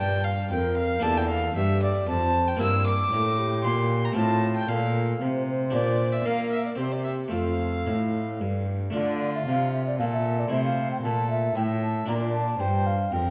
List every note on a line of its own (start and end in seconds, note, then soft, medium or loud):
0.00 0.47 G2 medium
0.00 0.50 G2 medium
0.00 0.98 D4 medium
0.00 0.99 F4 soft
0.00 0.23 D5 medium
0.00 0.26 G5 loud
0.24 0.50 F5 medium
0.51 1.02 F2 medium
0.51 1.00 F2 medium
0.51 1.04 A#4 medium
0.51 0.76 G5 medium
0.77 1.04 F5 medium
1.00 1.54 E2 medium
1.00 2.03 A#3 medium
1.00 2.54 D4 medium
1.00 2.55 G4 medium
1.00 1.55 A4 medium
1.00 1.19 A5 loud
1.04 1.52 E2 medium
1.17 1.28 G5 medium
1.28 1.55 F5 medium
1.55 2.07 G2 medium
1.55 2.04 G2 medium
1.55 2.09 G4 medium
1.55 1.81 E5 loud
1.82 2.08 D5 medium
2.08 2.59 F2 medium
2.08 2.56 F2 medium
2.08 2.61 C5 medium
2.08 2.49 A5 loud
2.47 2.60 G5 medium
2.56 3.11 G2 medium
2.56 4.10 A#3 medium
2.56 4.11 C4 medium
2.56 4.12 E4 medium
2.56 2.94 A#4 medium
2.56 2.86 E6 loud
2.61 3.08 G2 medium
2.86 3.63 D6 loud
3.12 3.66 A2 medium
3.12 3.60 A2 medium
3.12 3.40 A4 medium
3.39 4.19 G4 medium
3.64 4.16 A#2 medium
3.64 4.12 A#2 medium
3.64 4.06 C6 loud
4.05 4.15 A#5 medium
4.12 5.66 A3 soft
4.12 5.67 C4 medium
4.12 5.68 F4 medium
4.12 4.54 A5 medium
4.16 4.64 A2 medium
4.16 4.67 A2 medium
4.16 4.69 F4 medium
4.57 4.70 G5 medium
4.68 5.20 A#2 medium
4.68 5.17 A#2 medium
4.68 5.23 A4 medium
4.68 5.21 F5 medium
5.21 5.75 C3 medium
5.21 5.69 C3 medium
5.21 5.47 C5 medium
5.47 6.27 C5 medium
5.70 6.25 A#2 medium
5.70 6.21 A#2 medium
5.70 6.73 D4 soft
5.70 6.74 G4 soft
5.70 6.14 D5 medium
6.12 6.27 E5 medium
6.25 6.77 A#3 medium
6.25 6.74 A#3 medium
6.25 6.80 A#4 medium
6.25 6.51 F5 medium
6.52 6.64 E5 medium
6.65 6.78 D5 medium
6.76 7.28 C3 medium
6.76 7.31 C3 medium
6.76 7.29 C4 soft
6.76 7.30 G4 soft
6.76 7.32 G4 medium
6.76 6.93 C5 medium
6.92 7.03 D5 medium
7.04 7.12 E5 medium
7.28 8.34 A3 soft
7.28 8.35 C4 soft
7.28 8.89 F4 soft
7.28 8.64 F5 medium
7.32 7.87 F2 medium
7.32 7.82 F2 soft
7.32 8.64 A4 medium
7.86 8.41 A2 medium
7.86 8.36 A2 medium
8.40 8.93 G2 medium
8.40 8.90 G2 medium
8.90 9.43 A3 medium
8.90 10.46 D4 soft
8.90 9.95 F4 medium
8.90 10.47 F4 medium
8.90 9.30 D5 medium
8.94 9.43 D3 medium
9.35 9.47 E5 medium
9.46 10.01 C3 medium
9.46 9.95 C3 medium
9.46 9.73 F5 medium
9.73 9.85 E5 medium
9.87 9.99 D5 medium
9.98 10.50 A#2 medium
9.98 10.48 A#2 medium
9.98 10.49 A4 medium
9.98 10.05 F5 medium
10.13 10.41 E5 medium
10.40 10.53 D5 medium
10.48 11.02 C3 medium
10.48 12.02 A3 soft
10.48 12.03 E4 soft
10.48 11.02 C5 medium
10.48 10.64 E5 medium
10.53 11.00 C3 medium
10.65 10.90 F5 medium
10.92 10.97 G5 medium
11.03 11.54 A#2 medium
11.03 11.52 A#2 medium
11.03 11.57 A4 medium
11.03 11.29 A5 medium
11.31 11.55 E5 medium
11.56 12.07 A2 medium
11.56 12.04 A2 medium
11.56 12.10 E5 medium
11.56 11.62 G5 medium
11.83 12.08 A5 medium
12.06 12.59 A#2 medium
12.06 12.56 A#2 medium
12.06 13.30 D4 soft
12.06 13.30 F4 soft
12.06 12.58 D5 medium
12.06 12.15 A#5 medium
12.35 12.62 A5 medium
12.59 13.11 G2 medium
12.59 13.08 G2 medium
12.59 13.10 C5 medium
12.59 12.88 G5 medium
12.87 13.15 F5 medium
13.12 13.30 F2 medium
13.12 13.30 A#4 medium
13.12 13.30 G5 medium